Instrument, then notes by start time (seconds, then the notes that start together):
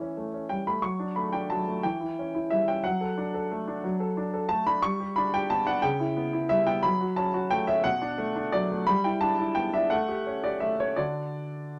grand piano
Already playing: E3 E5
0.01 C#4
0.17 A3
0.34 C#4
0.49 G3 G5
0.67 A3 B5
0.82 F#3 C#6
0.99 D4
1.16 A3 B5
1.33 D4 G5
1.50 F#3 A5
1.67 A3
1.83 E3 G5
2.01 E4
2.19 C#4
2.35 E4
2.50 G3 E5
2.68 C#4 G5
2.84 F#3 F#5
3.01 A4
3.18 D4
3.34 A4
3.51 A3
3.68 D4
3.84 F#3
4.00 A4
4.17 D4
4.34 A4
4.49 A3 A5
4.66 D4 B5
4.82 G3 C#6
5.00 G4
5.16 D4 B5
5.34 G4 G5
5.50 B3 A5
5.67 D4 F#5
5.82 C#3 G5
6.00 E4
6.17 B3
6.33 E4
6.49 G3 E5
6.67 B3 G5
6.83 F#3 B5
7.01 F#4
7.16 C#4 A5
7.34 F#4
7.51 A3 G5
7.67 C#4 E5
7.84 B2 F#5
8.02 D4
8.18 A3
8.36 D4
8.52 F#3 D5
8.71 A3
8.87 G3 B5
9.04 E4 G5
9.21 D4 A5
9.38 E4
9.55 B3 G5
9.73 D4 E5
9.90 A3 F#5
10.08 G4
10.27 C#4
10.44 G4 D5
10.60 A3 E5
10.80 C#4 C#5
10.96 D3 D4 F#4 D5